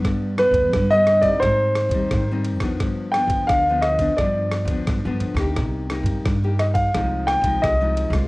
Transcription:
<<
  \new Staff \with { instrumentName = "Grand piano" } { \time 4/4 \key g \phrygian \tempo 4 = 87 r8 b'8. ees''8 d''16 c''4. r8 | r8 g''8 f''8 ees''8 d''4. r8 | r4. ees''16 f''8. g''8 ees''8. r16 | }
  \new Staff \with { instrumentName = "Nylon-string guitar" } { \time 4/4 \key g \phrygian << { <g b d'>8 <g b d'>8. <g b d'>8 <g c' ees'>4 <g c' ees'>8 <g c' ees'>8 <f b d'>16~ | <f b d'>8 <f b d'>8. <f b d'>8 <f b d'>16 <f b d'>8. <f b d'>8 <f b d'>8 <bes ees' g'>16~ | <bes ees' g'>8 <bes ees' g'>8. <bes ees' g'>8. <f aes ees'>8. <f aes ees'>8 <f aes ees'>8 <aes bes f'>16 | } \\ { g,4 d4 aes,4 ees4 | g,4 d4 g,4 d4 | c4 g,4 c4 c4 | } >> }
  \new Staff \with { instrumentName = "Upright bass" } { \clef bass \time 4/4 \key g \phrygian g,8. d,16 g,4 aes,8. ees,16 aes,8. ees,16 | g,8. d,16 d,4 g,8. d,16 g,16 g,16 f,16 d,16 | c,8. g,16 g,4 c,8. c,16 c,8. c,16 | }
  \new DrumStaff \with { instrumentName = "Drums" } \drummode { \time 4/4 <bd cymr ss>8 <cymr ss>16 <bd cymr>16 <bd cymr ss>8 <cymr ss>16 <bd cymr>16 <bd cymr ss>8 <cymr ss>16 <bd cymr>16 <bd cymr ss>8 cymr16 <bd cymr ss>16 | <bd cymr ss>8 <cymr ss>16 <bd cymr>16 <bd cymr ss>8 <cymr ss>16 <bd cymr>16 <bd cymr ss>8 <cymr ss>16 <bd cymr>16 <bd cymr ss>8 cymr16 <bd cymr ss>16 | <bd cymr ss>8 <cymr ss>16 <bd cymr>16 <bd cymr ss>8 <cymr ss>16 <bd cymr>16 <bd cymr ss>8 <cymr ss>16 <bd cymr>16 <bd cymr ss>8 cymr16 <bd cymr ss>16 | }
>>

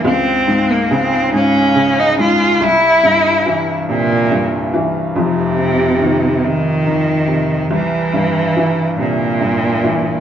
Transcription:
<<
  \new Staff \with { instrumentName = "Cello" } { \time 6/8 \key f \minor \tempo 4. = 47 c'8. bes16 c'8 des'8. ees'16 f'8 | e'4. bes,4 r8 | c4. ees4. | e4. bes,4. | }
  \new Staff \with { instrumentName = "Upright piano" } { \clef bass \time 6/8 \key f \minor des,8 aes,8 des8 aes,8 des8 aes,8 | c,8 g,8 e8 c8 g,8 e8 | <f,, f,>8 c8 ees8 c8 ees8 c8 | c,8 g,8 e8 c8 g,8 e8 | }
>>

